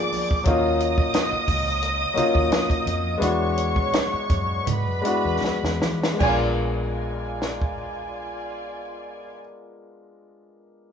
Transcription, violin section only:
0.00 0.43 D5 medium
0.00 0.43 D6 loud
0.46 3.17 D#5 medium
0.46 3.17 D#6 loud
3.21 4.64 C#5 medium
3.21 4.64 C#6 medium
4.67 6.18 B4 medium
4.67 6.17 B5 medium
6.20 9.31 F4 medium
6.20 9.30 D5 medium
6.20 9.30 G#5 medium

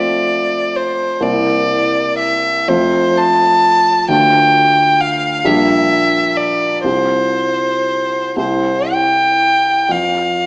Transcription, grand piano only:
0.00 1.23 F2 soft
0.00 1.17 A3 soft
0.00 1.17 C4 soft
0.00 1.17 F4 soft
1.20 2.63 C2 soft
1.20 2.63 A#3 soft
1.20 2.64 C4 soft
1.20 2.64 E4 soft
2.68 4.04 F2 soft
2.68 4.04 A3 soft
2.68 4.04 C4 soft
2.68 4.05 F4 soft
4.08 5.41 D2 soft
4.08 5.41 A3 soft
4.08 5.41 D4 soft
4.08 5.42 F4 soft
5.44 6.80 A#1 soft
5.44 6.80 G3 soft
5.44 6.81 D4 soft
5.44 6.81 G4 soft
6.84 8.32 C2 soft
6.84 8.33 C4 soft
6.84 8.33 F4 soft
6.84 8.33 G4 soft
8.36 9.86 C2 soft
8.36 9.86 C4 soft
8.36 9.86 E4 soft
8.36 9.86 G4 soft
9.89 10.46 F2 soft

